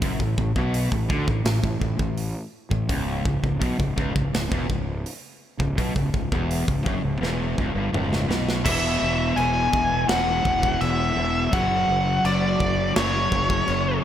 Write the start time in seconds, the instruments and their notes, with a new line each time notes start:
0.02 fingered electric bass F#1, distorted electric guitar F#2, kick, open hi-hat
0.20 fingered electric bass A1, distorted electric guitar A2, kick
0.38 fingered electric bass A1, distorted electric guitar A2, kick
0.56 fingered electric bass B1, distorted electric guitar B2, kick
0.74 open hi-hat
0.92 fingered electric bass A1, distorted electric guitar A2, kick
1.09 fingered electric bass D2, distorted electric guitar D3, kick
1.26 fingered electric bass A1, distorted electric guitar A2, kick
1.45 fingered electric bass A1, distorted electric guitar A2, snare, open hi-hat
1.63 fingered electric bass A1, distorted electric guitar A2, kick
1.80 fingered electric bass A1, distorted electric guitar A2, kick
1.97 fingered electric bass A1, distorted electric guitar A2, kick
2.18 open hi-hat
2.71 fingered electric bass A1, distorted electric guitar A2, kick
2.89 fingered electric bass C#1, distorted electric guitar C#2, kick, open hi-hat
3.25 fingered electric bass C#1, distorted electric guitar C#2, kick
3.43 fingered electric bass C#1, distorted electric guitar C#2, kick
3.60 fingered electric bass B1, distorted electric guitar B2, kick, open hi-hat
3.79 fingered electric bass C#1, distorted electric guitar C#2, kick
3.96 fingered electric bass C#1, distorted electric guitar C#2, kick
4.15 fingered electric bass C#1, distorted electric guitar C#2, kick
4.33 fingered electric bass C#1, distorted electric guitar C#2, snare, open hi-hat
4.52 fingered electric bass E1, distorted electric guitar E2, kick
4.69 fingered electric bass C#1, distorted electric guitar C#2, kick
5.06 open hi-hat
5.59 fingered electric bass C#1, distorted electric guitar C#2, kick
5.78 fingered electric bass B1, distorted electric guitar B2, kick, open hi-hat
5.95 fingered electric bass C#1, distorted electric guitar C#2, kick
6.14 fingered electric bass C#1, distorted electric guitar C#2, kick
6.32 fingered electric bass E1, distorted electric guitar E2, kick
6.51 open hi-hat
6.67 fingered electric bass C#1, distorted electric guitar C#2, kick
6.84 fingered electric bass F#1, distorted electric guitar F#2, kick
7.02 fingered electric bass C#1, distorted electric guitar C#2
7.21 fingered electric bass E1, distorted electric guitar E2, snare
7.58 fingered electric bass C#1, distorted electric guitar C#2, kick
7.74 fingered electric bass G1, distorted electric guitar G2
7.92 fingered electric bass C#1, distorted electric guitar C#2, mid tom
8.13 snare
8.28 fingered electric bass B1, distorted electric guitar B2, snare
8.49 snare
8.63 fingered electric bass E1, distorted electric guitar E2 B2 E3, lead electric guitar E5, kick, crash, china
9.02 fingered electric bass E1
9.36 fingered electric bass E1, lead electric guitar G#5, china
9.73 fingered electric bass E1, kick
10.07 fingered electric bass E1, distorted electric guitar E2 B2 E3, lead electric guitar F#5, snare, china
10.45 fingered electric bass E1, kick
10.63 kick
10.81 fingered electric bass E1, lead electric guitar E5, china
11.16 fingered electric bass E1
11.51 fingered electric bass F#1, distorted electric guitar F#2 C#3 F#3, lead electric guitar F#5, kick, china
11.89 fingered electric bass F#1
12.24 fingered electric bass F#1, lead electric guitar D5, china
12.60 fingered electric bass F#1, kick
12.95 fingered electric bass F#1, distorted electric guitar F#2 C#3 F#3, lead electric guitar C#5, snare, china
13.32 fingered electric bass F#1, kick
13.50 kick
13.68 fingered electric bass F#1, china